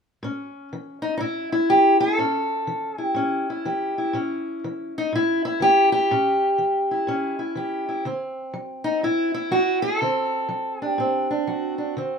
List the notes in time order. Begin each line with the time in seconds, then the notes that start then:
0.23 A2 C#4
0.73 E3
1.02 D#4
1.17 A2 D#4 E4
1.52 E4
1.69 E3 G4
2.00 A4
2.18 A2 C#4
2.67 E3
2.98 E4
3.03 G4
3.15 A2 C#4
3.50 E4
3.65 E3 G4
3.98 E4
4.13 A2 C#4
4.64 E3
4.98 D#4
5.13 A2 E4
5.45 E4
5.60 E3 G4
5.92 G4
6.11 A2 C#4
6.58 E3
6.91 E4
7.07 A2 C#4
7.39 E4
7.55 E3 G4
7.89 E4
8.05 D3 C4
8.54 F#3
8.84 D#4
9.03 A2 E4
9.34 E4
9.51 F#3 F#4
9.82 A4
10.02 D3 C4
10.49 F#3
10.82 D4
10.86 G4
10.98 A2 C4
11.31 D4
11.47 F#3 F#4
11.78 D4
11.97 D3 C4